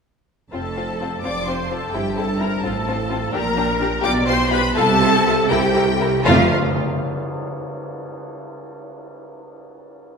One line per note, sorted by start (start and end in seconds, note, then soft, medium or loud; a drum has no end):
0.52 1.16 F1 soft
0.52 1.16 F2 medium
0.52 0.61 C4 soft
0.52 0.61 F4 soft
0.52 1.20 A4 medium
0.52 1.20 A5 medium
0.76 0.85 C4 soft
0.76 0.84 F4 soft
1.01 1.09 C4 soft
1.01 1.09 F4 soft
1.23 1.86 F1 soft
1.23 1.86 F2 soft
1.23 1.32 C4 soft
1.23 1.32 F4 soft
1.23 1.48 D5 medium
1.23 1.47 D6 medium
1.47 1.55 C4 soft
1.47 1.55 F4 soft
1.47 1.71 C5 soft
1.47 1.71 C6 medium
1.69 1.79 C4 soft
1.69 1.79 F4 soft
1.69 1.94 A4 medium
1.69 1.93 A5 medium
1.92 2.55 G1 medium
1.92 2.56 G2 medium
1.92 2.02 C4 soft
1.92 2.01 E4 soft
1.92 2.18 G4 medium
1.92 2.16 G5 medium
2.16 2.24 C4 soft
2.16 2.24 E4 soft
2.16 2.41 A4 medium
2.16 2.39 A5 medium
2.39 2.48 C4 soft
2.39 2.48 E4 soft
2.39 2.64 A#4 medium
2.39 2.63 A#5 medium
2.62 3.25 A1 medium
2.62 3.26 A2 medium
2.62 2.72 C4 soft
2.62 2.72 F4 soft
2.62 3.33 A4 medium
2.62 3.33 A5 medium
2.87 2.95 C4 medium
2.87 2.96 F4 soft
3.10 3.18 C4 medium
3.10 3.18 F4 medium
3.32 3.96 A#1 medium
3.32 3.96 A#2 medium
3.32 3.41 D4 medium
3.32 3.41 G4 medium
3.32 4.05 A#4 medium
3.32 4.02 A#5 medium
3.56 3.64 D4 medium
3.56 3.65 G4 medium
3.80 3.88 D4 medium
3.80 3.88 G4 medium
4.02 4.68 B1 medium
4.02 4.68 B2 medium
4.02 4.11 F4 medium
4.02 4.10 G4 medium
4.02 4.29 D5 medium
4.02 4.11 D6 loud
4.27 4.35 F4 medium
4.27 4.36 G4 medium
4.27 4.52 C5 medium
4.27 4.51 C6 loud
4.51 4.59 F4 medium
4.51 4.59 G4 medium
4.51 4.61 B4 medium
4.51 4.75 B5 loud
4.75 5.42 C2 medium
4.75 5.41 C3 medium
4.75 4.84 F4 medium
4.75 5.49 A4 medium
4.75 4.84 A4 medium
4.75 5.48 A5 loud
5.01 5.09 F4 medium
5.01 5.09 A4 medium
5.26 5.34 F4 medium
5.26 5.34 A4 medium
5.49 6.17 C2 medium
5.49 6.16 C3 medium
5.49 5.58 E4 medium
5.49 6.25 G4 medium
5.49 5.58 A#4 medium
5.49 6.23 G5 loud
5.76 5.84 E4 medium
5.76 5.84 A#4 medium
6.00 6.08 E4 medium
6.00 6.08 A#4 medium
6.25 6.53 F1 medium
6.25 6.52 F2 loud
6.25 6.52 A3 medium
6.25 6.52 F4 medium
6.25 6.52 F5 medium
6.25 tam-tam medium